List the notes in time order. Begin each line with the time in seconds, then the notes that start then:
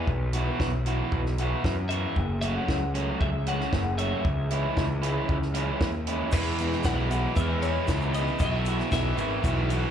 Already playing: B4
0.07 B1, kick
0.33 E3 B3 E4 F#4, closed hi-hat
0.60 B1, kick, snare
0.86 E3 B3 E4 F#4, closed hi-hat
1.12 B1, kick
1.26 snare
1.38 E3 B3 E4 F#4, closed hi-hat
1.64 F#2, kick, snare
1.89 E3 B3 E4 F#4 E5, closed hi-hat
2.16 F#1, kick
2.41 F#3 A3 C#4 F#4 F#5, closed hi-hat
2.69 C#2, kick, snare
2.95 F#3 A3 C#4 F#4, closed hi-hat
3.20 C#2 E5, kick
3.46 F#3 A3 C#4 F#4 F#5, closed hi-hat
3.60 snare
3.72 F#1, kick, snare
3.98 F#3 A3 C#4 F#4 E5, closed hi-hat
4.25 C#2, kick
4.50 E3 G#3 C#4 E4, closed hi-hat
4.77 C#2, kick, snare
5.02 E3 G#3 C#4 E4, closed hi-hat
5.29 C#2, kick
5.42 snare
5.54 E3 G#3 C#4 E4, closed hi-hat
5.80 D#2, kick, snare
6.07 E3 G#3 C#4 E4, closed hi-hat
6.32 E2 B2 E3 G#3 B3 E4 B4, kick, crash, shaker
6.58 E2 B2 E3 G#3 B3 E4, ride, shaker
6.72 snare, shaker
6.83 B1 E2 B2 E3 G#3 B3 E4 F#5, kick, snare, ride, shaker
7.09 E2 B2 E3 G#3 B3 E4, ride, shaker
7.35 E2 B2 E3 G#3 B3 E4 E5, kick, ride, shaker
7.61 E2 B2 E3 G#3 B3 E4 C#5, ride, shaker
7.86 C#2 E2 B2 E3 G#3 B3 E4, kick, snare, ride, shaker
8.01 shaker
8.12 E2 B2 E3 G#3 B3 E4 D#5, ride, shaker
8.27 shaker
8.39 B1 B2 E3 B3 E4 F#4 D#5, kick, ride, shaker
8.52 E5
8.66 B2 E3 B3 E4 F#4, ride, shaker
8.79 snare, shaker
8.90 B1 B2 E3 B3 E4 F#4 E5, kick, snare, ride, shaker
9.16 G#1 B2 E3 B3 E4 F#4, ride, shaker
9.42 B1 B2 E3 B3 E4 F#4, kick, ride, shaker
9.68 B2 E3 B3 E4 F#4, ride, shaker